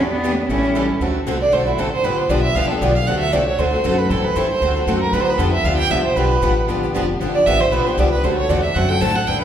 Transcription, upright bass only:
0, 0, Header, 1, 3, 480
1, 0, Start_track
1, 0, Tempo, 258398
1, 1869, Time_signature, 4, 2, 24, 8
1, 17539, End_track
2, 0, Start_track
2, 0, Title_t, "Upright bass"
2, 0, Program_c, 0, 32
2, 0, Note_on_c, 0, 40, 80
2, 712, Note_off_c, 0, 40, 0
2, 906, Note_on_c, 0, 33, 77
2, 1675, Note_off_c, 0, 33, 0
2, 1854, Note_on_c, 0, 38, 70
2, 2327, Note_off_c, 0, 38, 0
2, 2337, Note_on_c, 0, 36, 76
2, 2808, Note_off_c, 0, 36, 0
2, 2826, Note_on_c, 0, 35, 72
2, 3282, Note_off_c, 0, 35, 0
2, 3293, Note_on_c, 0, 33, 82
2, 3765, Note_off_c, 0, 33, 0
2, 3780, Note_on_c, 0, 31, 82
2, 4236, Note_off_c, 0, 31, 0
2, 4247, Note_on_c, 0, 35, 83
2, 4722, Note_off_c, 0, 35, 0
2, 4735, Note_on_c, 0, 36, 75
2, 4985, Note_off_c, 0, 36, 0
2, 5223, Note_on_c, 0, 35, 88
2, 5689, Note_off_c, 0, 35, 0
2, 5706, Note_on_c, 0, 38, 81
2, 6171, Note_off_c, 0, 38, 0
2, 6183, Note_on_c, 0, 36, 79
2, 6640, Note_off_c, 0, 36, 0
2, 6651, Note_on_c, 0, 38, 76
2, 7122, Note_off_c, 0, 38, 0
2, 7137, Note_on_c, 0, 42, 88
2, 7601, Note_off_c, 0, 42, 0
2, 7612, Note_on_c, 0, 45, 83
2, 7862, Note_off_c, 0, 45, 0
2, 8097, Note_on_c, 0, 43, 83
2, 8555, Note_off_c, 0, 43, 0
2, 8567, Note_on_c, 0, 38, 73
2, 9031, Note_off_c, 0, 38, 0
2, 9042, Note_on_c, 0, 42, 77
2, 9507, Note_off_c, 0, 42, 0
2, 9519, Note_on_c, 0, 43, 74
2, 9985, Note_off_c, 0, 43, 0
2, 9996, Note_on_c, 0, 41, 84
2, 10465, Note_off_c, 0, 41, 0
2, 10476, Note_on_c, 0, 38, 77
2, 10946, Note_off_c, 0, 38, 0
2, 10957, Note_on_c, 0, 36, 75
2, 11434, Note_off_c, 0, 36, 0
2, 11442, Note_on_c, 0, 35, 79
2, 11917, Note_off_c, 0, 35, 0
2, 11927, Note_on_c, 0, 33, 90
2, 12399, Note_off_c, 0, 33, 0
2, 12419, Note_on_c, 0, 31, 75
2, 12881, Note_off_c, 0, 31, 0
2, 12892, Note_on_c, 0, 29, 80
2, 13363, Note_off_c, 0, 29, 0
2, 13370, Note_on_c, 0, 31, 77
2, 13842, Note_off_c, 0, 31, 0
2, 13868, Note_on_c, 0, 33, 86
2, 14322, Note_off_c, 0, 33, 0
2, 14333, Note_on_c, 0, 35, 79
2, 14583, Note_off_c, 0, 35, 0
2, 14816, Note_on_c, 0, 36, 81
2, 15286, Note_off_c, 0, 36, 0
2, 15298, Note_on_c, 0, 38, 75
2, 15767, Note_off_c, 0, 38, 0
2, 15775, Note_on_c, 0, 40, 88
2, 16247, Note_off_c, 0, 40, 0
2, 16260, Note_on_c, 0, 42, 80
2, 16729, Note_off_c, 0, 42, 0
2, 16746, Note_on_c, 0, 45, 84
2, 17213, Note_off_c, 0, 45, 0
2, 17230, Note_on_c, 0, 40, 78
2, 17539, Note_off_c, 0, 40, 0
2, 17539, End_track
3, 0, Start_track
3, 0, Title_t, "Muted upright bass strokes"
3, 5019, Note_on_c, 9, 29, 37
3, 5205, Note_off_c, 9, 29, 0
3, 7876, Note_on_c, 9, 29, 36
3, 8062, Note_off_c, 9, 29, 0
3, 14606, Note_on_c, 9, 29, 36
3, 14791, Note_off_c, 9, 29, 0
3, 17539, End_track
0, 0, End_of_file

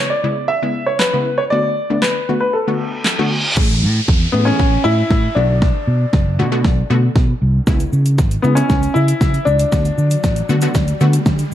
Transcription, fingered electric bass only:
0, 0, Header, 1, 2, 480
1, 0, Start_track
1, 0, Key_signature, 3, "major"
1, 0, Tempo, 512821
1, 1422, Time_signature, 4, 2, 24, 8
1, 10802, End_track
2, 0, Start_track
2, 0, Title_t, "Fingered electric bass"
2, 0, Program_c, 0, 33
2, 3340, Note_on_c, 0, 33, 102
2, 3582, Note_on_c, 0, 45, 90
2, 3596, Note_off_c, 0, 33, 0
2, 3738, Note_off_c, 0, 45, 0
2, 3823, Note_on_c, 0, 40, 99
2, 3978, Note_off_c, 0, 40, 0
2, 4060, Note_on_c, 0, 45, 98
2, 4217, Note_off_c, 0, 45, 0
2, 4301, Note_on_c, 0, 33, 98
2, 4457, Note_off_c, 0, 33, 0
2, 4541, Note_on_c, 0, 45, 97
2, 4697, Note_off_c, 0, 45, 0
2, 4779, Note_on_c, 0, 45, 95
2, 4936, Note_off_c, 0, 45, 0
2, 5020, Note_on_c, 0, 35, 103
2, 5332, Note_off_c, 0, 35, 0
2, 5499, Note_on_c, 0, 47, 97
2, 5656, Note_off_c, 0, 47, 0
2, 5741, Note_on_c, 0, 30, 89
2, 5981, Note_on_c, 0, 47, 95
2, 5995, Note_off_c, 0, 30, 0
2, 6221, Note_on_c, 0, 35, 96
2, 6235, Note_off_c, 0, 47, 0
2, 6377, Note_off_c, 0, 35, 0
2, 6460, Note_on_c, 0, 47, 89
2, 6617, Note_off_c, 0, 47, 0
2, 6698, Note_on_c, 0, 47, 100
2, 6855, Note_off_c, 0, 47, 0
2, 6942, Note_on_c, 0, 36, 92
2, 7098, Note_off_c, 0, 36, 0
2, 7180, Note_on_c, 0, 37, 100
2, 7337, Note_off_c, 0, 37, 0
2, 7419, Note_on_c, 0, 49, 98
2, 7661, Note_on_c, 0, 32, 93
2, 7675, Note_off_c, 0, 49, 0
2, 7818, Note_off_c, 0, 32, 0
2, 7900, Note_on_c, 0, 49, 98
2, 8056, Note_off_c, 0, 49, 0
2, 8141, Note_on_c, 0, 37, 101
2, 8297, Note_off_c, 0, 37, 0
2, 8381, Note_on_c, 0, 49, 88
2, 8537, Note_off_c, 0, 49, 0
2, 8620, Note_on_c, 0, 49, 96
2, 8777, Note_off_c, 0, 49, 0
2, 8859, Note_on_c, 0, 37, 98
2, 9016, Note_off_c, 0, 37, 0
2, 9102, Note_on_c, 0, 38, 115
2, 9258, Note_off_c, 0, 38, 0
2, 9340, Note_on_c, 0, 50, 100
2, 9496, Note_off_c, 0, 50, 0
2, 9583, Note_on_c, 0, 33, 86
2, 9739, Note_off_c, 0, 33, 0
2, 9819, Note_on_c, 0, 50, 96
2, 9976, Note_off_c, 0, 50, 0
2, 10060, Note_on_c, 0, 38, 106
2, 10217, Note_off_c, 0, 38, 0
2, 10300, Note_on_c, 0, 50, 96
2, 10457, Note_off_c, 0, 50, 0
2, 10539, Note_on_c, 0, 50, 99
2, 10696, Note_off_c, 0, 50, 0
2, 10802, End_track
0, 0, End_of_file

